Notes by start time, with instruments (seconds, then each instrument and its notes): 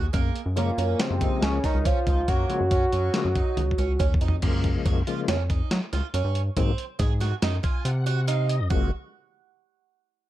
0.13 analog synth bass F#2, twelve-string acoustic guitar A#3, kick, closed hi-hat
0.36 closed hi-hat
0.46 analog synth bass F#2
0.56 tonewheel organ C#3 F3 G#3 A#3, analog synth lead A#3 F4, twelve-string acoustic guitar C#4, closed hi-hat
0.78 analog synth bass F#2, twelve-string acoustic guitar C#4, closed hi-hat
0.99 tonewheel organ C#3 F3 G#3 A#3, analog synth lead C4 G4, snare, closed hi-hat
1.10 analog synth bass F#2
1.21 twelve-string acoustic guitar D#4, kick, closed hi-hat
1.42 analog synth bass C#2, analog synth lead C#4 G#4, snare, closed hi-hat
1.64 twelve-string acoustic guitar C#4, analog synth lead D#4 A#4, kick, snare, closed hi-hat
1.74 analog synth bass C#2
1.85 twelve-string acoustic guitar C#4, analog synth lead F4 C5, kick, closed hi-hat
2.07 analog synth bass C#2, twelve-string acoustic guitar D#4, kick, closed hi-hat
2.28 analog synth bass F#2, twelve-string acoustic guitar A#3, analog synth lead F#4 C#5, kick, closed hi-hat
2.49 tonewheel organ C#3 F3 G#3 A#3, closed hi-hat
2.60 analog synth bass F#2
2.71 twelve-string acoustic guitar C#4, kick, closed hi-hat
2.92 analog synth bass F#2, twelve-string acoustic guitar C#4, closed hi-hat
3.14 tonewheel organ C#3 F3 G#3 A#3, snare, closed hi-hat
3.25 analog synth bass F#2
3.35 twelve-string acoustic guitar D#4, kick, closed hi-hat
3.57 analog synth bass C#2, closed hi-hat, high tom
3.71 kick
3.78 analog synth bass C#2, twelve-string acoustic guitar C#4, closed hi-hat
3.99 analog synth bass D#2, twelve-string acoustic guitar C#4, kick, closed hi-hat
4.14 kick
4.21 analog synth bass F2, twelve-string acoustic guitar D#4, closed hi-hat
4.28 floor tom
4.42 analog synth bass F#2, tonewheel organ C#3 F3 G#3 A#3, twelve-string acoustic guitar A#3, kick, closed hi-hat, crash
4.64 kick, closed hi-hat
4.85 analog synth bass F#2, twelve-string acoustic guitar F#4, kick, closed hi-hat
5.07 tonewheel organ C#3 F3 G#3 A#3, twelve-string acoustic guitar F4, closed hi-hat
5.28 analog synth bass F2, twelve-string acoustic guitar C#4, snare, closed hi-hat
5.50 twelve-string acoustic guitar D#4, kick, closed hi-hat
5.71 analog synth bass F#3, snare, closed hi-hat
5.93 analog synth bass C#2, twelve-string acoustic guitar F4, snare, closed hi-hat
6.14 analog synth bass F#2, twelve-string acoustic guitar C#4, closed hi-hat
6.25 analog synth bass G2
6.35 closed hi-hat
6.57 analog synth bass G#2, tonewheel organ C3 D#3 F#3 A#3, twelve-string acoustic guitar C4, kick, closed hi-hat
6.78 closed hi-hat
6.99 analog synth bass G#2, twelve-string acoustic guitar G#4, kick, snare, closed hi-hat
7.20 twelve-string acoustic guitar F#4, snare, closed hi-hat
7.42 analog synth bass F#2, twelve-string acoustic guitar D#4, snare, closed hi-hat
7.63 twelve-string acoustic guitar F4, tonewheel organ G#5, kick, closed hi-hat
7.85 analog synth bass C3, tonewheel organ F#5, closed hi-hat
8.06 twelve-string acoustic guitar F#4, tonewheel organ F#5, closed hi-hat
8.28 twelve-string acoustic guitar D#4, tonewheel organ F5, closed hi-hat
8.49 tonewheel organ D#5, closed hi-hat
8.60 analog synth bass F2
8.70 analog synth bass F#1, tonewheel organ C#3 F3 G#3 A#3, twelve-string acoustic guitar F#4, kick